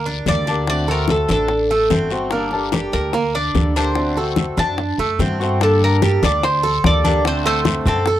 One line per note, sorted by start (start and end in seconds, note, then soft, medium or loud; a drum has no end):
0.00 0.23 D2 medium
0.00 0.30 A#4 medium
0.06 0.46 D4 medium
0.06 high conga soft
0.26 1.23 D2 medium
0.26 0.47 G3 medium
0.26 0.47 A#3 soft
0.26 0.48 D4 soft
0.26 0.47 A4 medium
0.26 0.68 D5 loud
0.26 high bongo soft
0.26 low bongo medium
0.26 high conga medium
0.26 short guiro medium
0.47 0.68 G3 medium
0.47 0.68 A#3 medium
0.47 0.87 D4 medium
0.47 0.68 D4 medium
0.47 0.67 A4 medium
0.47 high bongo soft
0.47 high conga soft
0.47 short guiro medium
0.67 0.88 D3 medium
0.67 0.88 A3 medium
0.67 0.88 C4 medium
0.67 0.87 F#4 medium
0.67 0.88 D5 loud
0.67 high bongo medium
0.67 high conga soft
0.67 long guiro medium
0.88 1.50 A3 medium
0.88 1.50 C4 medium
0.88 1.49 F#4 medium
0.88 1.28 A4 medium
0.88 1.10 A#4 medium
0.88 high bongo soft
0.88 high conga soft
1.08 1.30 A4 medium
1.08 high bongo medium
1.08 high conga medium
1.08 short guiro medium
1.28 1.87 A1 medium
1.28 1.69 D4 medium
1.28 2.09 A4 medium
1.28 high bongo soft
1.28 high conga medium
1.28 short guiro medium
1.48 muted steel-string acoustic guitar stroke medium
1.48 high bongo medium
1.48 high conga soft
1.48 long guiro medium
1.71 1.91 A3 medium
1.71 high conga soft
1.90 2.87 G1 medium
1.90 2.10 D3 soft
1.90 2.11 A3 medium
1.90 2.31 C4 medium
1.90 2.11 C4 medium
1.90 2.10 F#4 medium
1.90 high bongo soft
1.90 low bongo medium
1.90 high conga medium
1.90 short guiro medium
2.10 2.32 A3 soft
2.10 2.32 C4 medium
2.10 2.31 F#4 medium
2.10 high bongo soft
2.10 short guiro medium
2.31 2.52 D3 medium
2.31 2.52 G3 medium
2.31 2.72 A#3 medium
2.31 2.52 A#3 medium
2.31 2.53 D4 medium
2.31 high bongo medium
2.31 high conga soft
2.31 long guiro medium
2.35 2.51 A4 medium
2.51 3.13 G3 soft
2.51 3.13 A#3 medium
2.51 3.14 D4 medium
2.51 3.15 A4 medium
2.51 high bongo soft
2.51 high conga soft
2.72 3.13 G4 medium
2.72 high bongo medium
2.72 high conga medium
2.72 short guiro medium
2.92 3.51 D2 medium
2.92 3.32 A#4 medium
2.92 high bongo soft
2.92 high conga soft
2.92 short guiro medium
3.13 3.34 A#3 medium
3.13 muted steel-string acoustic guitar stroke medium
3.13 high bongo medium
3.13 high conga soft
3.13 long guiro medium
3.35 3.75 D4 medium
3.35 3.77 D5 medium
3.35 high conga soft
3.55 4.52 D2 medium
3.55 3.75 G3 soft
3.55 3.76 A#3 medium
3.55 3.76 D4 medium
3.55 3.75 A4 medium
3.55 high bongo soft
3.55 low bongo medium
3.55 high conga medium
3.55 short guiro medium
3.76 3.96 G3 medium
3.76 3.97 A#3 medium
3.76 4.16 D4 medium
3.76 3.97 D4 medium
3.76 3.96 A4 medium
3.76 4.59 C5 medium
3.76 high bongo soft
3.76 high conga soft
3.76 short guiro medium
3.95 4.16 D3 medium
3.95 4.17 A3 medium
3.95 4.17 C4 medium
3.95 4.17 F#4 medium
3.95 high bongo medium
3.95 high conga soft
3.95 long guiro medium
4.17 4.78 A3 soft
4.17 4.78 C4 medium
4.17 4.78 F#4 medium
4.17 4.57 A4 medium
4.17 high bongo soft
4.17 high conga soft
4.36 high bongo medium
4.36 high conga medium
4.36 short guiro medium
4.57 4.96 F#2 medium
4.57 4.98 D4 medium
4.57 5.37 A5 medium
4.57 high bongo soft
4.57 high conga medium
4.57 short guiro medium
4.78 muted steel-string acoustic guitar stroke medium
4.78 high bongo medium
4.78 high conga soft
4.78 long guiro medium
4.98 5.18 F#2 medium
4.98 5.19 A3 medium
4.98 high conga soft
5.19 6.16 G2 medium
5.19 5.39 D3 soft
5.19 5.40 A3 soft
5.19 5.60 C4 medium
5.19 5.40 C4 medium
5.19 5.39 F#4 medium
5.19 high bongo soft
5.19 low bongo medium
5.19 high conga medium
5.19 short guiro medium
5.40 5.61 A3 medium
5.40 5.61 C4 medium
5.40 5.60 F#4 medium
5.40 high bongo soft
5.40 short guiro medium
5.60 6.01 D3 medium
5.60 6.01 G3 medium
5.60 6.01 A#3 medium
5.60 6.02 D4 medium
5.60 6.02 A4 medium
5.60 5.81 A4 medium
5.60 high bongo medium
5.60 high conga soft
5.60 long guiro medium
5.81 6.25 A#4 loud
5.81 high conga soft
6.02 6.42 G3 soft
6.02 6.42 A#3 medium
6.02 6.43 D4 medium
6.02 6.22 G4 medium
6.02 6.43 A4 medium
6.02 high bongo medium
6.02 high conga medium
6.02 short guiro medium
6.23 6.80 D2 medium
6.23 6.62 D4 medium
6.23 6.43 D5 medium
6.23 high conga medium
6.23 short guiro medium
6.43 6.85 C5 medium
6.43 muted steel-string acoustic guitar stroke medium
6.43 high bongo medium
6.43 high conga soft
6.43 long guiro medium
6.63 7.03 A4 medium
6.63 high conga soft
6.84 7.80 D2 medium
6.84 7.03 G3 medium
6.84 7.04 A#3 medium
6.84 7.04 D4 medium
6.84 7.03 A4 medium
6.84 7.23 D5 loud
6.84 high bongo medium
6.84 low bongo medium
6.84 high conga medium
6.84 short guiro medium
7.04 7.24 G3 medium
7.04 7.25 A#3 medium
7.04 7.44 D4 medium
7.04 7.24 D4 medium
7.04 7.24 A4 medium
7.04 high conga medium
7.04 short guiro medium
7.25 7.64 D3 medium
7.25 7.65 A3 medium
7.25 7.66 C4 medium
7.25 7.66 F#4 medium
7.25 7.45 C5 medium
7.25 high bongo medium
7.25 high conga soft
7.25 long guiro medium
7.46 7.85 A3 medium
7.46 7.88 C5 loud
7.46 high bongo soft
7.46 high conga soft
7.65 8.05 D3 soft
7.65 8.06 A3 medium
7.65 8.06 C4 medium
7.65 8.07 F#4 soft
7.65 high bongo medium
7.65 high conga medium
7.65 short guiro medium
7.85 8.20 F#2 medium
7.85 8.06 C4 medium
7.85 8.20 A4 medium
7.85 high conga soft
7.85 low conga medium
7.85 short guiro medium
8.06 8.20 A4 medium
8.06 muted steel-string acoustic guitar stroke medium
8.06 high bongo medium
8.06 high conga soft
8.06 long guiro medium